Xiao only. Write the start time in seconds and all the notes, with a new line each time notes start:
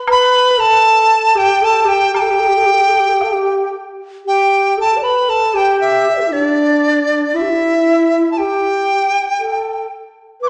0.08 B4
0.51 B4
0.58 A4
1.35 G4
1.62 A4
1.85 G4
2.13 G4
2.22 A4
2.30 G4
2.40 A4
2.48 G4
2.57 A4
2.65 G4
2.73 A4
2.81 G4
2.89 A4
2.99 G4
3.09 A4
3.14 G4
3.24 A4
3.33 G4
4.25 G4
4.78 A4
4.97 D5
5.03 B4
5.21 B4
5.29 A4
5.54 G4
6.11 E5
6.15 B4 D5
6.19 G4 A4
6.28 D4 E4
7.34 E4
7.42 G4
7.50 E4
8.38 G4
9.40 A4
10.41 B4